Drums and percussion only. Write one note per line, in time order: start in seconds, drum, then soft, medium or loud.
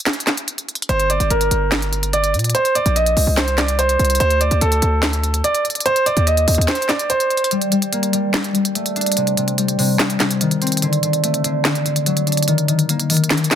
0.06 snare loud
0.06 clap medium
0.06 closed hi-hat medium
0.13 closed hi-hat medium
0.20 closed hi-hat medium
0.27 snare medium
0.27 clap medium
0.27 closed hi-hat medium
0.37 closed hi-hat medium
0.48 closed hi-hat medium
0.58 closed hi-hat medium
0.69 closed hi-hat soft
0.75 closed hi-hat medium
0.82 closed hi-hat medium
0.89 closed hi-hat medium
1.00 closed hi-hat medium
1.10 closed hi-hat medium
1.20 closed hi-hat medium
1.30 closed hi-hat medium
1.41 closed hi-hat medium
1.51 closed hi-hat medium
1.72 snare loud
1.72 clap medium
1.72 closed hi-hat medium
1.82 closed hi-hat medium
1.93 closed hi-hat medium
2.03 closed hi-hat medium
2.13 closed hi-hat medium
2.24 closed hi-hat medium
2.34 closed hi-hat soft
2.39 closed hi-hat medium
2.44 closed hi-hat medium
2.50 closed hi-hat medium
2.55 closed hi-hat medium
2.65 closed hi-hat medium
2.75 closed hi-hat medium
2.86 closed hi-hat medium
2.96 closed hi-hat medium
3.06 closed hi-hat medium
3.17 open hi-hat medium
3.37 snare loud
3.37 clap medium
3.37 closed hi-hat medium
3.48 closed hi-hat medium
3.58 snare medium
3.58 clap medium
3.58 closed hi-hat medium
3.68 closed hi-hat medium
3.79 closed hi-hat medium
3.89 closed hi-hat medium
3.99 closed hi-hat soft
4.05 closed hi-hat medium
4.10 closed hi-hat medium
4.15 closed hi-hat medium
4.20 closed hi-hat medium
4.30 closed hi-hat medium
4.41 closed hi-hat medium
4.51 closed hi-hat medium
4.61 closed hi-hat medium
4.72 closed hi-hat medium
4.82 closed hi-hat medium
5.03 snare loud
5.03 clap loud
5.03 closed hi-hat medium
5.13 closed hi-hat medium
5.23 closed hi-hat medium
5.34 closed hi-hat medium
5.44 closed hi-hat medium
5.55 closed hi-hat medium
5.65 closed hi-hat soft
5.70 closed hi-hat medium
5.75 closed hi-hat medium
5.80 closed hi-hat medium
5.86 closed hi-hat medium
5.96 closed hi-hat medium
6.06 closed hi-hat medium
6.17 closed hi-hat medium
6.27 closed hi-hat medium
6.37 closed hi-hat medium
6.48 closed hi-hat soft
6.48 open hi-hat medium
6.55 closed hi-hat medium
6.61 closed hi-hat medium
6.68 snare loud
6.68 clap loud
6.68 closed hi-hat medium
6.75 closed hi-hat medium
6.82 closed hi-hat medium
6.89 snare medium
6.89 clap medium
6.89 closed hi-hat medium
6.99 closed hi-hat medium
7.10 closed hi-hat medium
7.20 closed hi-hat medium
7.30 closed hi-hat soft
7.37 closed hi-hat medium
7.44 closed hi-hat medium
7.51 closed hi-hat medium
7.61 closed hi-hat medium
7.72 closed hi-hat medium
7.82 closed hi-hat medium
7.93 closed hi-hat medium
8.03 closed hi-hat medium
8.13 closed hi-hat medium
8.34 snare loud
8.34 clap loud
8.34 closed hi-hat medium
8.44 closed hi-hat medium
8.55 closed hi-hat medium
8.65 closed hi-hat medium
8.75 closed hi-hat medium
8.86 closed hi-hat medium
8.96 closed hi-hat soft
9.01 closed hi-hat medium
9.06 closed hi-hat medium
9.12 closed hi-hat medium
9.17 closed hi-hat medium
9.27 closed hi-hat medium
9.37 closed hi-hat medium
9.48 closed hi-hat medium
9.58 closed hi-hat medium
9.68 closed hi-hat medium
9.79 open hi-hat medium
9.99 snare loud
9.99 clap medium
9.99 closed hi-hat medium
10.10 closed hi-hat medium
10.20 snare medium
10.20 clap medium
10.20 closed hi-hat medium
10.31 closed hi-hat medium
10.41 closed hi-hat medium
10.51 closed hi-hat medium
10.62 closed hi-hat soft
10.67 closed hi-hat soft
10.72 closed hi-hat medium
10.77 closed hi-hat medium
10.82 closed hi-hat medium
10.93 closed hi-hat medium
11.03 closed hi-hat medium
11.13 closed hi-hat medium
11.24 closed hi-hat medium
11.34 closed hi-hat medium
11.44 closed hi-hat medium
11.65 snare loud
11.65 clap medium
11.65 closed hi-hat medium
11.75 closed hi-hat medium
11.86 closed hi-hat medium
11.96 closed hi-hat medium
12.06 closed hi-hat medium
12.17 closed hi-hat medium
12.27 closed hi-hat soft
12.32 closed hi-hat medium
12.37 closed hi-hat medium
12.43 closed hi-hat medium
12.48 closed hi-hat medium
12.58 closed hi-hat medium
12.68 closed hi-hat medium
12.79 closed hi-hat medium
12.89 closed hi-hat medium
12.99 closed hi-hat medium
13.10 closed hi-hat soft
13.10 open hi-hat medium
13.17 closed hi-hat medium
13.24 closed hi-hat medium
13.30 snare loud
13.30 clap loud
13.30 closed hi-hat medium
13.37 closed hi-hat medium
13.44 closed hi-hat medium
13.51 snare medium
13.51 clap medium
13.51 closed hi-hat medium